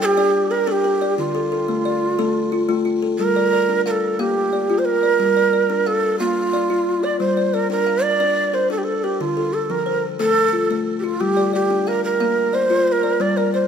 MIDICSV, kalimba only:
0, 0, Header, 1, 2, 480
1, 0, Start_track
1, 0, Key_signature, -2, "minor"
1, 0, Tempo, 333704
1, 1703, Time_signature, 12, 3, 24, 8
1, 19672, End_track
2, 0, Start_track
2, 0, Title_t, "Kalimba"
2, 0, Program_c, 0, 108
2, 0, Note_on_c, 0, 79, 64
2, 250, Note_on_c, 0, 74, 72
2, 253, Note_on_c, 0, 62, 86
2, 504, Note_off_c, 0, 79, 0
2, 730, Note_on_c, 0, 70, 64
2, 738, Note_off_c, 0, 62, 0
2, 953, Note_off_c, 0, 70, 0
2, 968, Note_on_c, 0, 62, 83
2, 970, Note_on_c, 0, 70, 69
2, 976, Note_off_c, 0, 74, 0
2, 1195, Note_off_c, 0, 70, 0
2, 1212, Note_on_c, 0, 70, 67
2, 1455, Note_off_c, 0, 62, 0
2, 1458, Note_on_c, 0, 74, 68
2, 1700, Note_on_c, 0, 50, 79
2, 1937, Note_off_c, 0, 70, 0
2, 1937, Note_on_c, 0, 69, 63
2, 1940, Note_off_c, 0, 74, 0
2, 2168, Note_off_c, 0, 69, 0
2, 2181, Note_off_c, 0, 50, 0
2, 2185, Note_on_c, 0, 69, 62
2, 2421, Note_on_c, 0, 57, 77
2, 2665, Note_on_c, 0, 74, 64
2, 2901, Note_off_c, 0, 57, 0
2, 2903, Note_off_c, 0, 69, 0
2, 3146, Note_on_c, 0, 57, 86
2, 3147, Note_on_c, 0, 69, 75
2, 3383, Note_off_c, 0, 74, 0
2, 3624, Note_off_c, 0, 57, 0
2, 3626, Note_on_c, 0, 65, 66
2, 3846, Note_off_c, 0, 65, 0
2, 3864, Note_off_c, 0, 69, 0
2, 3864, Note_on_c, 0, 65, 68
2, 3865, Note_on_c, 0, 57, 81
2, 4085, Note_off_c, 0, 65, 0
2, 4103, Note_on_c, 0, 65, 64
2, 4344, Note_off_c, 0, 57, 0
2, 4351, Note_on_c, 0, 69, 65
2, 4591, Note_on_c, 0, 55, 73
2, 4823, Note_off_c, 0, 65, 0
2, 4827, Note_off_c, 0, 69, 0
2, 4835, Note_on_c, 0, 74, 59
2, 5060, Note_off_c, 0, 74, 0
2, 5067, Note_off_c, 0, 55, 0
2, 5077, Note_on_c, 0, 74, 61
2, 5304, Note_on_c, 0, 62, 67
2, 5548, Note_on_c, 0, 77, 62
2, 5785, Note_off_c, 0, 62, 0
2, 5792, Note_off_c, 0, 74, 0
2, 6014, Note_off_c, 0, 77, 0
2, 6029, Note_on_c, 0, 58, 77
2, 6031, Note_on_c, 0, 77, 62
2, 6508, Note_off_c, 0, 58, 0
2, 6512, Note_on_c, 0, 74, 57
2, 6750, Note_off_c, 0, 77, 0
2, 6754, Note_on_c, 0, 65, 71
2, 7217, Note_off_c, 0, 74, 0
2, 7232, Note_off_c, 0, 65, 0
2, 7234, Note_on_c, 0, 74, 57
2, 7477, Note_on_c, 0, 55, 73
2, 7701, Note_off_c, 0, 74, 0
2, 7718, Note_on_c, 0, 74, 59
2, 7938, Note_off_c, 0, 74, 0
2, 7954, Note_off_c, 0, 55, 0
2, 7955, Note_on_c, 0, 74, 60
2, 8195, Note_on_c, 0, 62, 75
2, 8434, Note_on_c, 0, 77, 58
2, 8674, Note_off_c, 0, 62, 0
2, 8674, Note_off_c, 0, 74, 0
2, 8905, Note_off_c, 0, 77, 0
2, 8922, Note_on_c, 0, 77, 62
2, 8923, Note_on_c, 0, 58, 74
2, 9396, Note_on_c, 0, 74, 64
2, 9399, Note_off_c, 0, 58, 0
2, 9636, Note_on_c, 0, 65, 75
2, 9639, Note_off_c, 0, 77, 0
2, 10102, Note_off_c, 0, 74, 0
2, 10115, Note_off_c, 0, 65, 0
2, 10119, Note_on_c, 0, 74, 61
2, 10357, Note_on_c, 0, 55, 74
2, 10585, Note_off_c, 0, 74, 0
2, 10602, Note_on_c, 0, 74, 65
2, 10823, Note_off_c, 0, 74, 0
2, 10836, Note_off_c, 0, 55, 0
2, 10840, Note_on_c, 0, 74, 59
2, 11074, Note_on_c, 0, 62, 72
2, 11314, Note_on_c, 0, 77, 57
2, 11555, Note_off_c, 0, 62, 0
2, 11558, Note_off_c, 0, 74, 0
2, 11796, Note_on_c, 0, 62, 76
2, 11797, Note_on_c, 0, 74, 59
2, 12035, Note_off_c, 0, 77, 0
2, 12276, Note_off_c, 0, 62, 0
2, 12276, Note_on_c, 0, 70, 63
2, 12513, Note_on_c, 0, 62, 78
2, 12517, Note_off_c, 0, 74, 0
2, 12985, Note_off_c, 0, 70, 0
2, 12995, Note_off_c, 0, 62, 0
2, 13002, Note_on_c, 0, 70, 59
2, 13242, Note_on_c, 0, 50, 77
2, 13476, Note_on_c, 0, 69, 59
2, 13479, Note_off_c, 0, 70, 0
2, 13719, Note_off_c, 0, 50, 0
2, 13948, Note_on_c, 0, 53, 73
2, 14182, Note_on_c, 0, 72, 55
2, 14195, Note_off_c, 0, 69, 0
2, 14431, Note_off_c, 0, 53, 0
2, 14662, Note_on_c, 0, 57, 69
2, 14663, Note_on_c, 0, 69, 60
2, 14908, Note_off_c, 0, 72, 0
2, 15143, Note_on_c, 0, 65, 61
2, 15148, Note_off_c, 0, 57, 0
2, 15387, Note_off_c, 0, 69, 0
2, 15398, Note_on_c, 0, 57, 77
2, 15856, Note_off_c, 0, 65, 0
2, 15874, Note_on_c, 0, 65, 60
2, 15875, Note_off_c, 0, 57, 0
2, 16118, Note_on_c, 0, 55, 78
2, 16349, Note_on_c, 0, 74, 58
2, 16352, Note_off_c, 0, 65, 0
2, 16571, Note_off_c, 0, 74, 0
2, 16589, Note_on_c, 0, 74, 58
2, 16594, Note_off_c, 0, 55, 0
2, 16834, Note_on_c, 0, 62, 67
2, 17072, Note_on_c, 0, 77, 57
2, 17308, Note_off_c, 0, 74, 0
2, 17311, Note_off_c, 0, 62, 0
2, 17535, Note_off_c, 0, 77, 0
2, 17552, Note_on_c, 0, 77, 67
2, 17554, Note_on_c, 0, 58, 78
2, 18023, Note_on_c, 0, 74, 60
2, 18030, Note_off_c, 0, 58, 0
2, 18268, Note_on_c, 0, 65, 71
2, 18269, Note_off_c, 0, 77, 0
2, 18728, Note_off_c, 0, 74, 0
2, 18746, Note_off_c, 0, 65, 0
2, 18746, Note_on_c, 0, 74, 62
2, 18985, Note_on_c, 0, 55, 81
2, 19218, Note_off_c, 0, 74, 0
2, 19235, Note_on_c, 0, 74, 65
2, 19456, Note_off_c, 0, 74, 0
2, 19464, Note_off_c, 0, 55, 0
2, 19473, Note_on_c, 0, 74, 58
2, 19672, Note_off_c, 0, 74, 0
2, 19672, End_track
0, 0, End_of_file